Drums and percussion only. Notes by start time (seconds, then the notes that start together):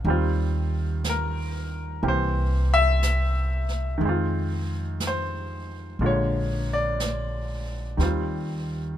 0.05 brush sweep
1.04 brush sweep, snare, hi-hat pedal
2.03 brush sweep
3.03 brush sweep, snare, hi-hat pedal
3.69 snare
4.02 brush sweep
5.00 brush sweep, snare, hi-hat pedal
6.00 brush sweep
7.00 brush sweep, snare, hi-hat pedal
7.99 brush sweep, snare